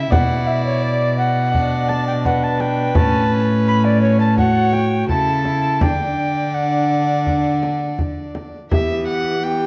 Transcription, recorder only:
0.11 0.49 F#5 loud
0.47 0.65 E5 loud
0.65 0.84 C#5 loud
0.82 1.18 D5 loud
1.18 1.90 F#5 loud
1.89 2.07 A5 loud
2.07 2.13 G5 loud
2.25 2.45 F#5 loud
2.44 2.62 A5 loud
2.61 2.98 G5 loud
2.96 3.42 A5 loud
3.68 3.86 B5 loud
3.85 4.01 D5 loud
4.02 4.19 C#5 loud
4.20 4.37 A5 loud
4.38 4.75 F#5 loud
4.73 5.08 G5 medium
5.09 5.83 A5 loud
5.82 6.56 G5 loud
6.54 7.99 F#5 medium
8.72 9.39 G4 medium
9.43 9.67 G4 medium

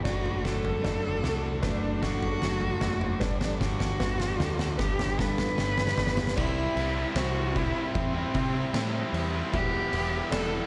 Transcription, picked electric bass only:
0.05 0.41 F#1 medium
0.45 0.81 F#1 medium
0.84 1.21 F#1 medium
1.24 1.60 C2 medium
1.63 2.00 F#1 medium
2.03 2.39 F#1 medium
2.42 2.78 F#1 medium
2.81 3.18 F#1 medium
3.21 3.58 G1 loud
3.61 3.97 G1 medium
4.00 4.37 G1 medium
4.39 4.76 D2 loud
4.79 5.15 G1 medium
5.19 5.55 G1 loud
5.58 5.95 G1 medium
5.98 6.34 G1 medium
6.38 6.66 C2 loud
6.76 7.05 C2 medium
7.15 7.72 C2 loud
7.95 8.23 E2 loud
8.35 8.63 C3 loud
8.74 9.02 A2 medium
9.13 9.41 E2 medium
9.54 9.81 E1 loud
9.92 10.21 E1 medium
10.31 10.60 E1 loud

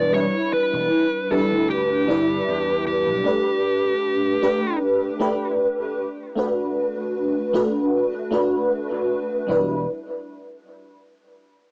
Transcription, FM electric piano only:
0.00 0.13 G3 medium
0.00 0.14 D4 medium
0.00 0.15 E4 medium
0.00 0.16 B4 loud
0.13 1.26 G3 medium
0.13 1.27 D4 medium
0.13 1.27 E4 medium
0.13 1.28 B4 medium
1.30 2.04 G3 medium
1.30 2.04 D4 medium
1.30 2.04 E4 medium
1.30 2.05 B4 loud
2.07 3.20 G3 medium
2.07 3.21 D4 medium
2.07 3.21 E4 medium
2.07 3.22 B4 loud
3.24 4.37 A3 medium
3.24 4.38 D4 medium
3.24 4.38 G4 medium
3.24 4.39 B4 medium
4.42 5.16 A3 medium
4.42 5.16 D4 medium
4.42 5.16 G4 medium
4.42 5.16 B4 loud
5.19 5.96 A3 loud
5.19 5.96 D4 medium
5.19 5.96 G4 medium
5.19 5.96 B4 loud
6.36 7.49 A3 medium
6.36 7.49 D4 medium
6.36 7.50 F#4 medium
6.36 7.50 B4 medium
7.53 8.27 A3 medium
7.53 8.28 D4 medium
7.53 8.28 F#4 medium
7.53 8.28 B4 loud
8.31 9.44 A3 medium
8.31 9.44 D4 medium
8.31 9.45 F#4 medium
8.31 9.45 B4 loud
9.47 9.77 G3 medium
9.47 9.78 D4 medium
9.47 9.79 E4 medium
9.52 9.80 B4 loud

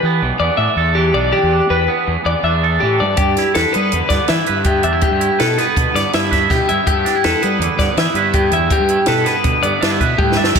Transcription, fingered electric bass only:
0.03 0.20 E3 medium
0.22 0.30 B1 medium
0.39 0.48 E2 medium
0.57 0.67 A2 medium
0.76 1.10 E2 medium
1.14 1.31 B1 medium
1.43 1.59 E2 medium
1.70 1.87 E2 medium
2.07 2.15 E2 medium
2.25 2.34 E2 medium
2.43 2.77 E2 medium
2.82 2.98 A2 medium
3.01 3.17 G2 medium
3.18 3.35 G2 medium
3.55 3.63 E2 medium
3.75 3.91 G3 medium
3.93 4.00 E2 medium
4.10 4.18 G2 medium
4.29 4.37 E3 medium
4.49 4.81 G2 medium
4.84 5.00 E2 medium
5.11 5.28 G2 medium
5.40 5.56 B2 medium
5.77 5.85 B2 medium
5.94 6.03 G2 medium
6.14 6.47 G2 medium
6.51 6.58 B2 medium
6.71 6.78 G2 medium
6.87 7.04 G2 medium
7.25 7.32 E2 medium
7.43 7.58 G3 medium
7.59 7.68 E2 medium
7.79 7.87 G2 medium
7.97 8.05 E3 medium
8.14 8.48 G2 medium
8.51 8.68 E2 medium
8.80 8.97 G2 medium
9.08 9.24 B2 medium
9.44 9.53 B2 medium
9.63 9.71 G2 medium
9.82 9.98 G2 medium
10.00 10.17 B2 medium
10.19 10.35 A2 medium
10.35 10.52 G2 medium
10.55 10.59 G2 medium

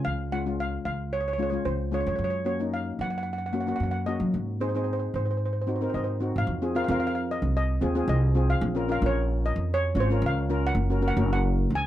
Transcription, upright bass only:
0.05 0.76 C#2 medium
0.85 1.57 C#2 medium
1.65 2.02 C#2 medium
2.06 2.18 F2 medium
2.18 2.90 F#2 medium
2.99 3.71 F#2 medium
3.80 4.16 F#2 medium
4.20 4.32 F#3 medium
4.34 5.05 G#2 medium
5.14 5.85 G#2 medium
5.94 6.31 G#2 medium
6.36 6.46 G#2 medium
6.47 6.84 F2 medium
6.88 7.36 F2 loud
7.42 7.77 C2 medium
7.82 8.06 D#2 medium
8.08 8.56 C2 loud
8.61 8.98 A#1 loud
9.02 9.50 A#1 loud
9.56 9.91 F2 medium
9.95 10.19 G#1 medium
10.22 10.70 C#2 loud
10.75 11.12 F#1 loud
11.17 11.64 F#1 loud
11.70 11.87 C#2 medium

